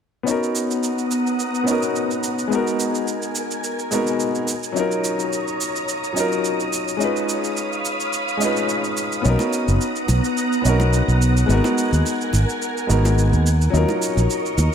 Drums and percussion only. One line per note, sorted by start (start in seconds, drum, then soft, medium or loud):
0.27 shaker soft
0.43 shaker soft
0.55 shaker medium
0.71 shaker soft
0.83 shaker soft
0.98 shaker soft
1.11 shaker medium
1.27 shaker soft
1.39 shaker soft
1.55 shaker soft
1.68 shaker medium
1.82 shaker soft
1.96 shaker soft
2.11 shaker soft
2.23 shaker medium
2.39 shaker soft
2.52 shaker soft
2.67 shaker soft
2.80 shaker medium
2.95 shaker soft
3.08 shaker soft
3.22 shaker soft
3.35 shaker medium
3.51 shaker soft
3.64 shaker soft
3.79 shaker soft
3.92 shaker medium
4.07 shaker soft
4.20 shaker soft
4.35 shaker soft
4.48 shaker medium
4.63 shaker soft
4.76 shaker soft
4.92 shaker soft
5.04 shaker medium
5.19 shaker soft
5.33 shaker soft
5.48 shaker soft
5.61 shaker medium
5.76 shaker soft
5.89 shaker soft
6.04 shaker soft
6.17 shaker medium
6.32 shaker soft
6.45 shaker soft
6.60 shaker soft
6.73 shaker medium
6.88 shaker soft
7.01 shaker soft
7.16 shaker soft
7.29 shaker medium
7.44 shaker soft
7.57 shaker soft
7.73 shaker soft
7.85 shaker medium
8.00 shaker soft
8.13 shaker soft
8.28 shaker soft
8.41 shaker medium
8.56 shaker soft
8.69 shaker soft
8.84 shaker soft
8.97 shaker medium
9.12 shaker soft
9.25 shaker soft
9.39 high bongo medium
9.39 shaker soft
9.53 shaker medium
9.68 shaker soft
9.81 shaker soft
9.96 shaker soft
10.08 high bongo medium
10.08 shaker medium
10.24 shaker soft
10.37 shaker soft
10.53 shaker soft
10.65 shaker medium
10.80 high bongo medium
10.80 shaker soft
10.93 shaker soft
11.09 shaker soft
11.22 shaker medium
11.37 shaker soft
11.50 shaker soft
11.64 high bongo medium
11.64 shaker soft
11.78 shaker medium
11.93 shaker soft
12.06 shaker soft
12.21 shaker soft
12.33 high bongo medium
12.33 shaker medium
12.49 shaker soft
12.62 shaker soft
12.77 shaker soft
12.90 shaker medium
13.05 high bongo medium
13.05 shaker soft
13.18 shaker soft
13.33 shaker soft
13.47 shaker medium
13.61 shaker soft
13.74 shaker soft
13.89 high bongo medium
13.89 shaker soft
14.02 shaker medium
14.18 shaker soft
14.30 shaker soft
14.46 shaker soft
14.58 high bongo medium
14.58 shaker medium